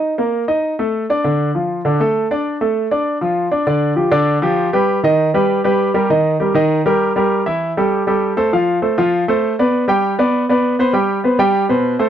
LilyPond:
\new Staff \with { instrumentName = "Grand piano" } { \time 4/4 \key d \phrygian \tempo 4 = 198 <ees' ees''>8 <bes bes'>4 <ees' ees''>4 <a a'>4 <d' d''>8 | <d d'>4 <f f'>4 <d d'>8 <a a'>4 <d' d''>8~ | <d' d''>8 <a a'>4 <d' d''>4 <f f'>4 <d' d''>8 | \key ees \lydian <d d' d''>4 <f f' g'>8 <d d' d''>4 <f f' g'>4 <g g' b'>8~ |
<g g' b'>8 <dis dis' dis''>4 <g g' b'>4 <g g' b'>4 <g g' bes'>8 | <ees ees' ees''>4 <g g' bes'>8 <ees ees' ees''>4 <g g' bes'>4 <g g' bes'>8~ | <g g' bes'>8 <e e' e''>4 <g g' a'>4 <g g' a'>4 <a a' c''>8 | <f f' f''>4 <a a' c''>8 <f f' f''>4 <a a' c''>4 <b b' d''>8~ |
<b b' d''>8 <g g' g''>4 <b b' d''>4 <b b' d''>4 <b b' c''>8 | <g g' g''>4 <b b' c''>8 <g g' g''>4 <b, b' c''>4 <a a' c''>8 | }